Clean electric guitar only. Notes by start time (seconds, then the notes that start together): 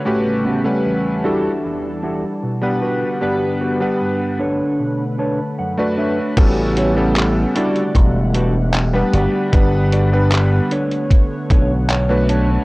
0.06 A2
0.44 B3 C#4 F#4 G4 A4
0.85 E2
1.24 D4 E4 F#4 G4 A4
1.64 E2
2.03 D4 E4 F#4 G4 A4
2.43 B2
2.82 F#4 G4 B4
3.22 G2
3.61 F#4 G4 B4
4.01 G2
4.39 D4 A4 B4 C#5
4.80 B2
5.18 D4 A4 B4 C#5 A5
5.58 F#2 F#5
5.78 D5
5.97 D4 A4 B4 C#5 E5
6.77 F#4 G4 B4 C#5
7.55 F#4 G4 A4 D5
8.34 F#4 G4 A4 B4
9.13 F#4 G4 B4 D5
9.92 F#4 G4 B4 D5
10.71 D4 A4 B4 C#5
11.50 D4 A4 B4 C#5
11.90 C#5
12.29 D4 A4 B4 C#5 A5